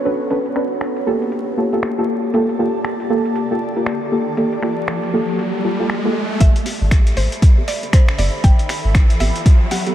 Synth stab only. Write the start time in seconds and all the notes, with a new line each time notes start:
0.05 C#4 D4 A4 B4
0.30 C#4 D4 A4 B4
0.56 C#4 D4 A4 B4
1.06 A#3 F4 G4 A4
1.57 A#3 F4 G4 A4
1.73 A#3 F4 G4 A4
1.98 A#3 F4 G4 A4
2.34 A#3 F4 G4 A4
2.59 A#3 F4 G4 A4
3.10 A#3 F4 G4 A4
3.51 A#3 F4 G4 A4
3.76 A#3 F4 G4 A#4
4.12 A#3 F4 G4 A4
4.37 A#3 F4 G4 A4
4.62 A#3 F4 G4 A4
5.13 A#3 F4 G4 A4
5.64 A#3 F4 G4 A4
5.79 A#3 F4 G4 A4
6.05 A#3 F4 G4 A4
6.41 G4
6.66 B3 C4 G4
7.17 A3 C4 G4
7.57 B3 C4 G4
7.83 B3 C4 A4
8.18 B3 C4 G4
8.44 G4
8.69 B3 C4 G4
9.20 B3 C4 G4
9.71 B3 C4 G4
9.86 B3 C4 G4